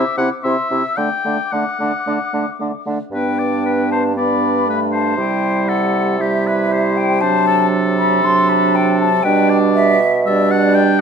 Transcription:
0.00 0.17 E5 medium
0.00 0.45 D6 medium
0.17 0.29 C3 medium
0.17 0.29 C4 medium
0.17 0.30 E4 medium
0.17 0.29 F#5 medium
0.44 0.57 C3 soft
0.44 0.56 C4 soft
0.44 0.56 E4 soft
0.44 0.98 E5 medium
0.44 0.70 C6 medium
0.70 0.83 C3 medium
0.70 0.83 C4 soft
0.70 0.83 E4 soft
0.70 0.96 E6 medium
0.97 1.10 D3 medium
0.97 1.10 A3 soft
0.97 1.10 D4 soft
0.97 1.54 G5 medium
0.97 2.83 D6 medium
1.25 1.37 D3 soft
1.25 1.37 A3 soft
1.25 1.39 D4 soft
1.52 1.65 D3 soft
1.52 1.65 A3 soft
1.52 1.66 D4 soft
1.52 2.60 F#5 medium
1.79 1.92 D3 soft
1.79 1.91 A3 soft
1.79 1.93 D4 soft
2.06 2.19 D3 soft
2.06 2.18 A3 soft
2.06 2.19 D4 soft
2.33 2.46 D3 soft
2.33 2.45 A3 soft
2.33 2.46 D4 soft
2.60 2.73 D3 soft
2.60 2.72 A3 soft
2.60 2.72 D4 soft
2.86 2.99 D3 soft
2.86 2.98 A3 soft
2.86 2.99 D4 soft
3.11 5.13 G2 medium
3.11 4.12 B3 soft
3.11 4.12 D4 medium
3.11 3.41 B4 soft
3.11 3.93 G5 medium
3.39 3.65 D5 medium
3.66 3.91 B4 soft
3.91 4.03 C5 soft
3.91 4.16 A5 medium
4.16 4.69 B3 soft
4.16 5.19 D4 soft
4.16 4.67 D5 medium
4.16 4.92 B5 medium
4.68 5.18 A3 soft
4.68 4.81 B4 soft
4.92 5.71 C5 medium
4.92 5.18 A5 medium
5.17 9.26 C3 medium
5.17 6.18 G3 soft
5.17 6.19 E4 medium
5.17 5.66 G5 medium
5.67 6.22 A4 medium
5.67 6.18 F#5 medium
6.19 7.23 G3 medium
6.19 7.24 E4 medium
6.19 6.48 G4 soft
6.19 6.98 E5 medium
6.47 6.74 B4 medium
6.73 7.21 C5 medium
6.97 7.22 G5 medium
7.21 8.24 F#3 medium
7.21 8.23 D4 medium
7.21 7.46 C5 medium
7.21 7.66 A5 medium
7.47 9.21 A4 medium
7.98 8.25 B5 medium
8.23 9.23 F#3 medium
8.23 9.08 D4 medium
8.23 8.50 C6 medium
8.49 8.76 B5 medium
8.75 8.99 G5 medium
8.99 9.24 A5 loud
9.23 10.98 B2 medium
9.23 9.97 G3 medium
9.23 9.97 D4 medium
9.23 9.51 B4 medium
9.23 9.57 G5 loud
9.50 9.99 D5 medium
9.75 10.29 E5 loud
10.26 11.01 G3 medium
10.26 11.01 D4 medium
10.26 11.01 D5 medium
10.26 10.53 E5 medium
10.51 10.77 F#5 medium
10.75 11.01 G5 medium

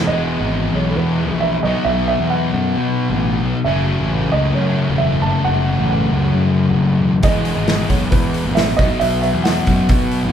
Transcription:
0.06 0.35 E1 medium
0.06 1.64 E2 medium
0.06 1.62 B2 medium
0.06 1.64 E3 medium
0.06 1.65 G#3 medium
0.06 1.64 B3 medium
0.06 1.65 G#4 medium
0.06 0.76 D#5 medium
0.41 0.69 G#1 medium
0.74 0.93 B1 medium
0.74 0.90 C#5 medium
0.88 0.96 A4 medium
0.96 1.31 E2 medium
0.96 1.43 B4 medium
1.30 1.59 A#1 medium
1.40 1.64 E5 medium
1.63 1.73 B1 medium
1.63 3.65 B2 medium
1.63 3.65 F#3 medium
1.63 3.66 B3 medium
1.63 3.66 D#4 medium
1.63 3.67 F#4 medium
1.63 1.87 D#5 medium
1.84 2.14 B1 medium
1.84 2.06 E5 loud
2.08 2.31 E5 medium
2.20 2.48 E2 medium
2.30 3.39 F#5 medium
2.54 2.73 F#2 medium
2.77 3.11 B2 medium
3.10 3.38 A1 medium
3.43 3.53 B1 medium
3.64 3.94 F#1 medium
3.64 7.21 F#2 medium
3.64 7.22 C#3 medium
3.64 7.22 F#3 medium
3.64 7.23 A3 medium
3.64 7.24 C#4 medium
3.64 7.24 F#4 medium
3.64 4.28 E5 medium
3.99 4.28 A1 medium
4.32 4.52 C#2 medium
4.32 4.56 D#5 medium
4.53 4.91 F#2 medium
4.53 5.00 C#5 medium
4.90 5.18 E1 medium
4.98 5.22 E5 medium
5.22 5.32 F#1 medium
5.22 5.45 A5 loud
5.44 5.74 F#1 medium
5.44 5.86 F#5 loud
5.79 6.07 A1 medium
5.90 6.75 F#5 medium
6.12 6.31 C#2 medium
6.34 6.69 F#2 medium
6.68 6.77 E1 medium
6.79 6.99 F#1 medium
7.01 7.21 E1 medium
7.21 7.52 E1 medium
7.21 8.78 E2 medium
7.21 8.76 B2 medium
7.21 8.78 E3 medium
7.21 8.79 G#3 medium
7.21 8.78 B3 medium
7.21 8.80 G#4 medium
7.21 7.86 D#5 medium
7.21 kick loud
7.21 open hi-hat medium
7.45 open hi-hat soft
7.57 7.85 G#1 medium
7.68 snare loud
7.68 open hi-hat medium
7.88 8.09 B1 medium
7.88 7.94 C#5 medium
7.88 kick medium
7.88 open hi-hat medium
8.11 8.47 E2 medium
8.11 8.58 B4 medium
8.11 kick loud
8.11 open hi-hat medium
8.34 open hi-hat soft
8.45 8.74 A1 medium
8.55 8.79 E5 medium
8.55 snare loud
8.55 open hi-hat medium
8.68 snare soft
8.77 8.88 B1 medium
8.77 10.32 B2 medium
8.77 10.32 F#3 medium
8.77 10.32 B3 medium
8.77 10.32 D#4 medium
8.77 10.32 F#4 medium
8.77 9.01 D#5 medium
8.77 kick medium
8.77 open hi-hat soft
9.00 9.30 B1 medium
9.00 9.20 E5 loud
9.00 open hi-hat medium
9.22 9.43 E5 medium
9.22 open hi-hat soft
9.34 9.62 E2 medium
9.44 10.32 F#5 medium
9.44 snare loud
9.44 open hi-hat medium
9.67 9.86 F#2 medium
9.67 kick medium
9.67 open hi-hat medium
9.89 10.25 B2 medium
9.89 kick loud
9.89 open hi-hat medium
10.11 open hi-hat soft
10.23 10.32 A1 medium

